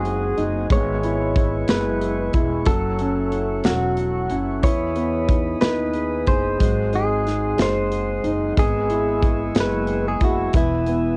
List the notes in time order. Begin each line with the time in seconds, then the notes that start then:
Already playing: F#1 F#3 G#3 C4 D#4 F#4 G#4 C5 F#5 G#5 D#6
0.05 G#4, closed hi-hat
0.37 F#1 D#4, closed hi-hat
0.70 G#1 G#3 B3 B4 C#5 E5 C#6, kick, closed hi-hat
1.03 B3 E4, closed hi-hat
1.36 E4, kick, closed hi-hat
1.68 F#1 G#3 B3 B4, snare, closed hi-hat
2.01 G#4, closed hi-hat
2.33 E1 E4, kick, closed hi-hat
2.65 F#1 F#3 C#4 A4 E5 F#5, kick, closed hi-hat
2.99 C#4, closed hi-hat
3.32 E4, closed hi-hat
3.64 E1 F#3 C#4 F#4, snare, closed hi-hat
3.97 A4, closed hi-hat
4.29 F#1 C#4 E4, closed hi-hat
4.63 E2 B3 E4 G#4 C#5 D#5 B5 D#6, kick, closed hi-hat
4.96 B3, closed hi-hat
5.29 D#4, kick, closed hi-hat
5.61 D#2 B3 D#4 B4, snare, closed hi-hat
5.94 G#4, closed hi-hat
6.27 F#1 D#4 G#4 C5, kick, closed hi-hat
6.59 G#1 F#3 G#3 F#5 C6, kick, closed hi-hat
6.93 C4 D#4 G#4, closed hi-hat
7.26 D#4, snare, closed hi-hat
7.57 F#1 G#3 C4, snare, closed hi-hat
7.62 C5
7.92 G#4, closed hi-hat
8.24 F#1 D#4, closed hi-hat
8.56 G#1 G#3 B3 G#4 B4 G#5 C#6 E6, kick, closed hi-hat
8.90 B3 E4, closed hi-hat
9.23 E4, kick, closed hi-hat
9.55 F#1 G#3 B3, snare, closed hi-hat
9.60 B4
9.87 G#4, closed hi-hat
10.08 G#4
10.21 F#1 E4 F#4, kick, closed hi-hat
10.53 E1 E3 B3 E4 D#6, kick, closed hi-hat
10.86 B3, closed hi-hat